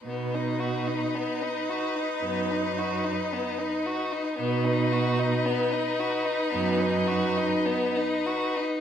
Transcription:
<<
  \new Staff \with { instrumentName = "Violin" } { \time 4/4 \key b \major \tempo 4 = 55 b'1 | b'1 | }
  \new Staff \with { instrumentName = "Viola" } { \time 4/4 \key b \major dis'1 | dis'1 | }
  \new Staff \with { instrumentName = "Violin" } { \time 4/4 \key b \major b16 dis'16 fis'16 dis'16 b16 dis'16 fis'16 dis'16 b16 dis'16 fis'16 dis'16 b16 dis'16 fis'16 dis'16 | b16 dis'16 fis'16 dis'16 b16 dis'16 fis'16 dis'16 b16 dis'16 fis'16 dis'16 b16 dis'16 fis'16 dis'16 | }
  \new Staff \with { instrumentName = "Cello" } { \clef bass \time 4/4 \key b \major b,4 r4 fis,4 r4 | b,4 r4 fis,4 r4 | }
>>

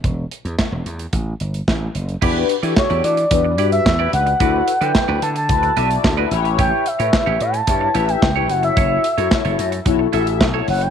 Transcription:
<<
  \new Staff \with { instrumentName = "Analog synth lead" } { \time 4/4 \key e \dorian \tempo 4 = 110 r1 | r4 cis''8 d''4~ d''16 e''8. fis''8~ | fis''8. g''8. a''16 a''4. r8. | g''8 e''4 a''4~ a''16 g''8. fis''16 e''16~ |
e''4.~ e''16 r4. r16 fis''16 g''16 | }
  \new Staff \with { instrumentName = "Clean electric guitar" } { \time 4/4 \key e \dorian r1 | <e' g' d''>8 r16 <e' g' d''>16 r16 <e' g' d''>16 r4 <e' g' d''>16 r8 <e' g' d''>16 r8 | <fis' b' d''>8 r16 <fis' b' d''>16 r16 <fis' b' d''>16 r4 <fis' b' e''>16 r8 <fis' b' d''>16 r8 | <e' g' cis''>8 r16 <e' g' cis''>16 r16 <e' g' cis''>16 r4 <e' g' cis''>16 r8 <e' g' cis''>16 r8 |
<e' a' cis''>8 r16 <e' a' cis''>16 r16 <e' a' cis''>16 r4 <e' a' e''>16 r8 <e' a' cis''>16 r8 | }
  \new Staff \with { instrumentName = "Analog polysynth" } { \time 4/4 \key e \dorian r1 | <d' fis' g' b'>8 r16 <d' fis' g' a'>4 r16 <d' fis' g' b'>8 <d' fis' g' b'>8 r16 <d' fis' g' b'>8 r16 | <e' fis' a' b'>8 r16 <fis e' a' b'>4 r16 <e' fis' a' b'>8 <e' fis' a' d''>8 r16 <e' fis' a' b'>16 <e' g' b' cis''>8~ | <e' g' b' cis''>8 r16 <e' g' b' cis''>4 r16 <e' g' b' cis''>8 <e' g' b' e''>8 r16 <e' g' b' cis''>16 <e' fis' a' cis''>8~ |
<e' fis' a' cis''>8 r16 <e' fis' a' cis''>4 r16 <e' fis' a' cis''>8 <e' fis' a' e''>8 r16 <e' fis' a' cis''>8 r16 | }
  \new Staff \with { instrumentName = "Slap bass" } { \clef bass \time 4/4 \key e \dorian e,,8 r16 e,16 r16 e,,16 e,8 a,,8 g,,8 a,,8 fis,,8 | e,8 r16 e16 r16 e,16 e8 e,8 g,8 e,8 cis,8 | d,8 r16 d16 r16 d,16 d8 d,8 b,,8 d,8 a,,8~ | a,,8 r16 a,16 r16 a,,16 a,8 g,8 a,,8 cis,8 fis,,8 |
fis,,8 r16 fis,16 r16 fis,,16 fis,8 b,,8 a,,8 b,,8 fis,,8 | }
  \new DrumStaff \with { instrumentName = "Drums" } \drummode { \time 4/4 <hh bd>8 hh16 hh16 <hc bd sn>8 hh16 hh16 <hh bd>8 hh16 hh16 <hc bd sn>8 hh16 hh16 | <cymc bd>8 hh16 hh16 <hc bd sn>16 hh16 hh16 hh16 <hh bd>8 hh16 hh16 <hc bd sn>8 hh16 hh16 | <hh bd>8 hh16 hh16 <hc bd sn>8 hh16 hh16 <hh bd>16 hh16 hh16 hh16 <hc bd sn>8 hh16 hh16 | <hh bd>8 hh16 hh16 <hc bd sn>8 hh16 hh16 <hh bd>8 hh16 hh16 <hc bd sn>8 hh16 hh16 |
<hh bd>8 hh16 hh16 <hc bd sn>16 hh16 hh16 hh16 <hh bd>8 hh16 hh16 <hc bd sn>8 hho16 hh16 | }
>>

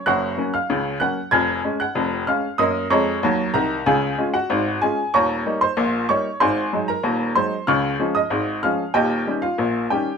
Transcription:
<<
  \new Staff \with { instrumentName = "Upright piano" } { \time 2/4 \key des \major \tempo 4 = 94 <ges'' des''' ges'''>8. <f'' f'''>8. <ges'' ges'''>8 | <aes'' f''' aes'''>8. <ges'' ges'''>8. <f'' f'''>8 | <ees'' ees'''>8 <des'' bes'' des'''>4 <bes' bes''>8 | <aes' f'' aes''>8. <ges' ges''>8. <aes' aes''>8 |
<des'' bes'' des'''>8. <c'' c'''>8. <des'' des'''>8 | <c'' aes'' c'''>8. <bes' bes''>8. <c'' c'''>8 | <f'' des''' f'''>8. <ees'' ees'''>8. <f'' f'''>8 | <g' ees'' g''>8. <f' f''>8. <g' g''>8 | }
  \new Staff \with { instrumentName = "Upright piano" } { \clef bass \time 2/4 \key des \major <ges,, ges,>8 <ges bes des'>8 <des, des>8 <ges bes des'>8 | <f,, f,>8 <aes des'>8 <f,, f,>8 <aes des'>8 | <ges, bes>8 <f, aes>8 <ees, ges>8 <c, ees>8 | <des, des>8 <aes des' f'>8 <aes,, aes,>8 <aes des' f'>8 |
<ees,, ees,>8 <g bes ees'>8 <bes,, bes,>8 <g bes ees'>8 | <aes,, aes,>8 <ges aes ees'>8 <ees,, ees,>8 <ges aes ees'>8 | <des, des>8 <f aes des'>8 <aes,, aes,>8 <f aes des'>8 | <ees,, ees,>8 <ees g des'>8 <bes,, bes,>8 <ees g des'>8 | }
>>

